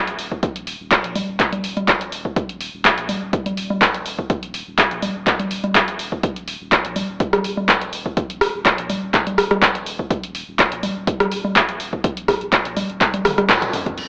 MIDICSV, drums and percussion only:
0, 0, Header, 1, 2, 480
1, 0, Start_track
1, 0, Tempo, 483871
1, 425, Time_signature, 4, 2, 24, 8
1, 13967, End_track
2, 0, Start_track
2, 0, Title_t, "Drums"
2, 74, Note_on_c, 9, 42, 52
2, 173, Note_off_c, 9, 42, 0
2, 185, Note_on_c, 9, 46, 98
2, 284, Note_off_c, 9, 46, 0
2, 313, Note_on_c, 9, 36, 55
2, 413, Note_off_c, 9, 36, 0
2, 425, Note_on_c, 9, 36, 117
2, 425, Note_on_c, 9, 42, 76
2, 524, Note_off_c, 9, 36, 0
2, 524, Note_off_c, 9, 42, 0
2, 554, Note_on_c, 9, 42, 53
2, 653, Note_off_c, 9, 42, 0
2, 665, Note_on_c, 9, 46, 103
2, 764, Note_off_c, 9, 46, 0
2, 905, Note_on_c, 9, 36, 117
2, 905, Note_on_c, 9, 42, 75
2, 909, Note_on_c, 9, 39, 119
2, 1004, Note_off_c, 9, 36, 0
2, 1005, Note_off_c, 9, 42, 0
2, 1008, Note_off_c, 9, 39, 0
2, 1034, Note_on_c, 9, 42, 50
2, 1133, Note_off_c, 9, 42, 0
2, 1145, Note_on_c, 9, 46, 103
2, 1145, Note_on_c, 9, 64, 87
2, 1245, Note_off_c, 9, 46, 0
2, 1245, Note_off_c, 9, 64, 0
2, 1385, Note_on_c, 9, 36, 116
2, 1385, Note_on_c, 9, 42, 77
2, 1388, Note_on_c, 9, 39, 62
2, 1484, Note_off_c, 9, 36, 0
2, 1484, Note_off_c, 9, 42, 0
2, 1487, Note_off_c, 9, 39, 0
2, 1513, Note_on_c, 9, 42, 50
2, 1513, Note_on_c, 9, 64, 84
2, 1612, Note_off_c, 9, 42, 0
2, 1612, Note_off_c, 9, 64, 0
2, 1625, Note_on_c, 9, 46, 102
2, 1724, Note_off_c, 9, 46, 0
2, 1754, Note_on_c, 9, 42, 36
2, 1754, Note_on_c, 9, 64, 91
2, 1853, Note_off_c, 9, 42, 0
2, 1853, Note_off_c, 9, 64, 0
2, 1865, Note_on_c, 9, 36, 115
2, 1865, Note_on_c, 9, 42, 77
2, 1868, Note_on_c, 9, 39, 120
2, 1964, Note_off_c, 9, 36, 0
2, 1964, Note_off_c, 9, 42, 0
2, 1967, Note_off_c, 9, 39, 0
2, 1994, Note_on_c, 9, 42, 52
2, 2093, Note_off_c, 9, 42, 0
2, 2105, Note_on_c, 9, 46, 101
2, 2204, Note_off_c, 9, 46, 0
2, 2233, Note_on_c, 9, 36, 60
2, 2332, Note_off_c, 9, 36, 0
2, 2345, Note_on_c, 9, 36, 119
2, 2345, Note_on_c, 9, 42, 75
2, 2444, Note_off_c, 9, 36, 0
2, 2444, Note_off_c, 9, 42, 0
2, 2473, Note_on_c, 9, 42, 49
2, 2572, Note_off_c, 9, 42, 0
2, 2584, Note_on_c, 9, 46, 105
2, 2683, Note_off_c, 9, 46, 0
2, 2824, Note_on_c, 9, 36, 120
2, 2825, Note_on_c, 9, 42, 71
2, 2828, Note_on_c, 9, 39, 120
2, 2924, Note_off_c, 9, 36, 0
2, 2924, Note_off_c, 9, 42, 0
2, 2927, Note_off_c, 9, 39, 0
2, 2953, Note_on_c, 9, 42, 48
2, 3052, Note_off_c, 9, 42, 0
2, 3064, Note_on_c, 9, 46, 106
2, 3064, Note_on_c, 9, 64, 88
2, 3163, Note_off_c, 9, 46, 0
2, 3163, Note_off_c, 9, 64, 0
2, 3304, Note_on_c, 9, 42, 76
2, 3305, Note_on_c, 9, 36, 120
2, 3404, Note_off_c, 9, 36, 0
2, 3404, Note_off_c, 9, 42, 0
2, 3432, Note_on_c, 9, 42, 50
2, 3432, Note_on_c, 9, 64, 82
2, 3532, Note_off_c, 9, 42, 0
2, 3532, Note_off_c, 9, 64, 0
2, 3544, Note_on_c, 9, 46, 105
2, 3644, Note_off_c, 9, 46, 0
2, 3673, Note_on_c, 9, 64, 92
2, 3772, Note_off_c, 9, 64, 0
2, 3784, Note_on_c, 9, 36, 120
2, 3784, Note_on_c, 9, 42, 75
2, 3788, Note_on_c, 9, 39, 117
2, 3884, Note_off_c, 9, 36, 0
2, 3884, Note_off_c, 9, 42, 0
2, 3887, Note_off_c, 9, 39, 0
2, 3913, Note_on_c, 9, 42, 50
2, 4012, Note_off_c, 9, 42, 0
2, 4024, Note_on_c, 9, 46, 105
2, 4123, Note_off_c, 9, 46, 0
2, 4153, Note_on_c, 9, 36, 60
2, 4252, Note_off_c, 9, 36, 0
2, 4264, Note_on_c, 9, 36, 124
2, 4265, Note_on_c, 9, 42, 72
2, 4364, Note_off_c, 9, 36, 0
2, 4364, Note_off_c, 9, 42, 0
2, 4393, Note_on_c, 9, 42, 47
2, 4492, Note_off_c, 9, 42, 0
2, 4504, Note_on_c, 9, 46, 105
2, 4603, Note_off_c, 9, 46, 0
2, 4744, Note_on_c, 9, 42, 72
2, 4745, Note_on_c, 9, 36, 122
2, 4747, Note_on_c, 9, 39, 109
2, 4843, Note_off_c, 9, 42, 0
2, 4844, Note_off_c, 9, 36, 0
2, 4846, Note_off_c, 9, 39, 0
2, 4873, Note_on_c, 9, 42, 44
2, 4972, Note_off_c, 9, 42, 0
2, 4984, Note_on_c, 9, 46, 101
2, 4984, Note_on_c, 9, 64, 88
2, 5083, Note_off_c, 9, 46, 0
2, 5083, Note_off_c, 9, 64, 0
2, 5224, Note_on_c, 9, 36, 116
2, 5224, Note_on_c, 9, 42, 74
2, 5227, Note_on_c, 9, 39, 59
2, 5323, Note_off_c, 9, 42, 0
2, 5324, Note_off_c, 9, 36, 0
2, 5327, Note_off_c, 9, 39, 0
2, 5352, Note_on_c, 9, 42, 47
2, 5352, Note_on_c, 9, 64, 78
2, 5451, Note_off_c, 9, 42, 0
2, 5451, Note_off_c, 9, 64, 0
2, 5464, Note_on_c, 9, 46, 105
2, 5563, Note_off_c, 9, 46, 0
2, 5592, Note_on_c, 9, 42, 34
2, 5592, Note_on_c, 9, 64, 88
2, 5692, Note_off_c, 9, 42, 0
2, 5692, Note_off_c, 9, 64, 0
2, 5704, Note_on_c, 9, 36, 118
2, 5704, Note_on_c, 9, 42, 74
2, 5707, Note_on_c, 9, 39, 114
2, 5803, Note_off_c, 9, 42, 0
2, 5804, Note_off_c, 9, 36, 0
2, 5806, Note_off_c, 9, 39, 0
2, 5832, Note_on_c, 9, 42, 48
2, 5932, Note_off_c, 9, 42, 0
2, 5944, Note_on_c, 9, 46, 102
2, 6043, Note_off_c, 9, 46, 0
2, 6072, Note_on_c, 9, 36, 59
2, 6172, Note_off_c, 9, 36, 0
2, 6184, Note_on_c, 9, 36, 114
2, 6184, Note_on_c, 9, 42, 74
2, 6283, Note_off_c, 9, 42, 0
2, 6284, Note_off_c, 9, 36, 0
2, 6312, Note_on_c, 9, 42, 49
2, 6412, Note_off_c, 9, 42, 0
2, 6424, Note_on_c, 9, 46, 102
2, 6523, Note_off_c, 9, 46, 0
2, 6664, Note_on_c, 9, 36, 113
2, 6664, Note_on_c, 9, 42, 71
2, 6667, Note_on_c, 9, 39, 110
2, 6763, Note_off_c, 9, 36, 0
2, 6763, Note_off_c, 9, 42, 0
2, 6766, Note_off_c, 9, 39, 0
2, 6792, Note_on_c, 9, 42, 47
2, 6892, Note_off_c, 9, 42, 0
2, 6903, Note_on_c, 9, 46, 99
2, 6903, Note_on_c, 9, 64, 81
2, 7003, Note_off_c, 9, 46, 0
2, 7003, Note_off_c, 9, 64, 0
2, 7143, Note_on_c, 9, 42, 71
2, 7144, Note_on_c, 9, 36, 117
2, 7243, Note_off_c, 9, 36, 0
2, 7243, Note_off_c, 9, 42, 0
2, 7272, Note_on_c, 9, 37, 87
2, 7272, Note_on_c, 9, 42, 49
2, 7272, Note_on_c, 9, 64, 77
2, 7371, Note_off_c, 9, 37, 0
2, 7371, Note_off_c, 9, 42, 0
2, 7371, Note_off_c, 9, 64, 0
2, 7384, Note_on_c, 9, 46, 104
2, 7483, Note_off_c, 9, 46, 0
2, 7512, Note_on_c, 9, 64, 85
2, 7611, Note_off_c, 9, 64, 0
2, 7624, Note_on_c, 9, 36, 112
2, 7624, Note_on_c, 9, 42, 72
2, 7627, Note_on_c, 9, 39, 111
2, 7723, Note_off_c, 9, 36, 0
2, 7723, Note_off_c, 9, 42, 0
2, 7726, Note_off_c, 9, 39, 0
2, 7752, Note_on_c, 9, 42, 49
2, 7851, Note_off_c, 9, 42, 0
2, 7864, Note_on_c, 9, 46, 102
2, 7963, Note_off_c, 9, 46, 0
2, 7992, Note_on_c, 9, 36, 58
2, 8092, Note_off_c, 9, 36, 0
2, 8104, Note_on_c, 9, 36, 112
2, 8104, Note_on_c, 9, 42, 76
2, 8203, Note_off_c, 9, 36, 0
2, 8204, Note_off_c, 9, 42, 0
2, 8233, Note_on_c, 9, 42, 50
2, 8332, Note_off_c, 9, 42, 0
2, 8344, Note_on_c, 9, 37, 85
2, 8344, Note_on_c, 9, 46, 101
2, 8444, Note_off_c, 9, 37, 0
2, 8444, Note_off_c, 9, 46, 0
2, 8584, Note_on_c, 9, 36, 109
2, 8585, Note_on_c, 9, 42, 77
2, 8588, Note_on_c, 9, 39, 111
2, 8683, Note_off_c, 9, 36, 0
2, 8684, Note_off_c, 9, 42, 0
2, 8687, Note_off_c, 9, 39, 0
2, 8712, Note_on_c, 9, 42, 48
2, 8812, Note_off_c, 9, 42, 0
2, 8824, Note_on_c, 9, 46, 98
2, 8824, Note_on_c, 9, 64, 82
2, 8923, Note_off_c, 9, 46, 0
2, 8923, Note_off_c, 9, 64, 0
2, 9064, Note_on_c, 9, 36, 113
2, 9065, Note_on_c, 9, 42, 75
2, 9068, Note_on_c, 9, 39, 58
2, 9163, Note_off_c, 9, 36, 0
2, 9164, Note_off_c, 9, 42, 0
2, 9167, Note_off_c, 9, 39, 0
2, 9193, Note_on_c, 9, 42, 50
2, 9193, Note_on_c, 9, 64, 77
2, 9293, Note_off_c, 9, 42, 0
2, 9293, Note_off_c, 9, 64, 0
2, 9305, Note_on_c, 9, 37, 79
2, 9305, Note_on_c, 9, 46, 102
2, 9404, Note_off_c, 9, 37, 0
2, 9404, Note_off_c, 9, 46, 0
2, 9433, Note_on_c, 9, 37, 67
2, 9433, Note_on_c, 9, 42, 36
2, 9433, Note_on_c, 9, 64, 86
2, 9532, Note_off_c, 9, 37, 0
2, 9532, Note_off_c, 9, 42, 0
2, 9532, Note_off_c, 9, 64, 0
2, 9544, Note_on_c, 9, 36, 112
2, 9545, Note_on_c, 9, 42, 76
2, 9548, Note_on_c, 9, 39, 108
2, 9644, Note_off_c, 9, 36, 0
2, 9644, Note_off_c, 9, 42, 0
2, 9647, Note_off_c, 9, 39, 0
2, 9673, Note_on_c, 9, 42, 50
2, 9772, Note_off_c, 9, 42, 0
2, 9785, Note_on_c, 9, 46, 100
2, 9884, Note_off_c, 9, 46, 0
2, 9913, Note_on_c, 9, 36, 55
2, 10012, Note_off_c, 9, 36, 0
2, 10024, Note_on_c, 9, 36, 114
2, 10025, Note_on_c, 9, 42, 80
2, 10123, Note_off_c, 9, 36, 0
2, 10124, Note_off_c, 9, 42, 0
2, 10153, Note_on_c, 9, 42, 52
2, 10252, Note_off_c, 9, 42, 0
2, 10265, Note_on_c, 9, 46, 98
2, 10364, Note_off_c, 9, 46, 0
2, 10504, Note_on_c, 9, 36, 109
2, 10504, Note_on_c, 9, 42, 79
2, 10507, Note_on_c, 9, 39, 115
2, 10603, Note_off_c, 9, 42, 0
2, 10604, Note_off_c, 9, 36, 0
2, 10607, Note_off_c, 9, 39, 0
2, 10633, Note_on_c, 9, 42, 52
2, 10732, Note_off_c, 9, 42, 0
2, 10744, Note_on_c, 9, 46, 97
2, 10744, Note_on_c, 9, 64, 86
2, 10844, Note_off_c, 9, 46, 0
2, 10844, Note_off_c, 9, 64, 0
2, 10985, Note_on_c, 9, 36, 109
2, 10985, Note_on_c, 9, 42, 80
2, 11084, Note_off_c, 9, 36, 0
2, 11084, Note_off_c, 9, 42, 0
2, 11113, Note_on_c, 9, 37, 85
2, 11113, Note_on_c, 9, 42, 53
2, 11113, Note_on_c, 9, 64, 80
2, 11212, Note_off_c, 9, 37, 0
2, 11212, Note_off_c, 9, 42, 0
2, 11212, Note_off_c, 9, 64, 0
2, 11225, Note_on_c, 9, 46, 99
2, 11324, Note_off_c, 9, 46, 0
2, 11353, Note_on_c, 9, 64, 89
2, 11452, Note_off_c, 9, 64, 0
2, 11465, Note_on_c, 9, 36, 112
2, 11465, Note_on_c, 9, 42, 81
2, 11468, Note_on_c, 9, 39, 113
2, 11564, Note_off_c, 9, 36, 0
2, 11564, Note_off_c, 9, 42, 0
2, 11567, Note_off_c, 9, 39, 0
2, 11593, Note_on_c, 9, 42, 52
2, 11692, Note_off_c, 9, 42, 0
2, 11705, Note_on_c, 9, 46, 97
2, 11804, Note_off_c, 9, 46, 0
2, 11833, Note_on_c, 9, 36, 56
2, 11932, Note_off_c, 9, 36, 0
2, 11945, Note_on_c, 9, 36, 115
2, 11945, Note_on_c, 9, 42, 84
2, 12044, Note_off_c, 9, 36, 0
2, 12044, Note_off_c, 9, 42, 0
2, 12073, Note_on_c, 9, 42, 55
2, 12172, Note_off_c, 9, 42, 0
2, 12185, Note_on_c, 9, 36, 76
2, 12185, Note_on_c, 9, 37, 79
2, 12185, Note_on_c, 9, 46, 103
2, 12284, Note_off_c, 9, 36, 0
2, 12284, Note_off_c, 9, 37, 0
2, 12284, Note_off_c, 9, 46, 0
2, 12313, Note_on_c, 9, 42, 37
2, 12412, Note_off_c, 9, 42, 0
2, 12424, Note_on_c, 9, 42, 81
2, 12425, Note_on_c, 9, 36, 117
2, 12427, Note_on_c, 9, 39, 117
2, 12523, Note_off_c, 9, 42, 0
2, 12524, Note_off_c, 9, 36, 0
2, 12526, Note_off_c, 9, 39, 0
2, 12552, Note_on_c, 9, 42, 51
2, 12651, Note_off_c, 9, 42, 0
2, 12664, Note_on_c, 9, 46, 100
2, 12664, Note_on_c, 9, 64, 94
2, 12763, Note_off_c, 9, 46, 0
2, 12763, Note_off_c, 9, 64, 0
2, 12793, Note_on_c, 9, 42, 37
2, 12892, Note_off_c, 9, 42, 0
2, 12904, Note_on_c, 9, 42, 82
2, 12905, Note_on_c, 9, 36, 110
2, 12908, Note_on_c, 9, 39, 62
2, 13003, Note_off_c, 9, 42, 0
2, 13004, Note_off_c, 9, 36, 0
2, 13007, Note_off_c, 9, 39, 0
2, 13033, Note_on_c, 9, 42, 54
2, 13033, Note_on_c, 9, 64, 81
2, 13132, Note_off_c, 9, 42, 0
2, 13132, Note_off_c, 9, 64, 0
2, 13144, Note_on_c, 9, 37, 76
2, 13144, Note_on_c, 9, 46, 100
2, 13144, Note_on_c, 9, 48, 60
2, 13243, Note_off_c, 9, 37, 0
2, 13243, Note_off_c, 9, 46, 0
2, 13243, Note_off_c, 9, 48, 0
2, 13273, Note_on_c, 9, 37, 63
2, 13273, Note_on_c, 9, 42, 39
2, 13273, Note_on_c, 9, 64, 93
2, 13372, Note_off_c, 9, 37, 0
2, 13372, Note_off_c, 9, 42, 0
2, 13372, Note_off_c, 9, 64, 0
2, 13384, Note_on_c, 9, 42, 81
2, 13384, Note_on_c, 9, 47, 77
2, 13385, Note_on_c, 9, 36, 113
2, 13388, Note_on_c, 9, 39, 116
2, 13484, Note_off_c, 9, 36, 0
2, 13484, Note_off_c, 9, 42, 0
2, 13484, Note_off_c, 9, 47, 0
2, 13487, Note_off_c, 9, 39, 0
2, 13512, Note_on_c, 9, 42, 56
2, 13512, Note_on_c, 9, 47, 72
2, 13611, Note_off_c, 9, 42, 0
2, 13611, Note_off_c, 9, 47, 0
2, 13624, Note_on_c, 9, 45, 93
2, 13624, Note_on_c, 9, 46, 99
2, 13724, Note_off_c, 9, 45, 0
2, 13724, Note_off_c, 9, 46, 0
2, 13752, Note_on_c, 9, 42, 36
2, 13752, Note_on_c, 9, 45, 84
2, 13753, Note_on_c, 9, 36, 57
2, 13852, Note_off_c, 9, 36, 0
2, 13852, Note_off_c, 9, 42, 0
2, 13852, Note_off_c, 9, 45, 0
2, 13864, Note_on_c, 9, 49, 79
2, 13963, Note_off_c, 9, 49, 0
2, 13967, End_track
0, 0, End_of_file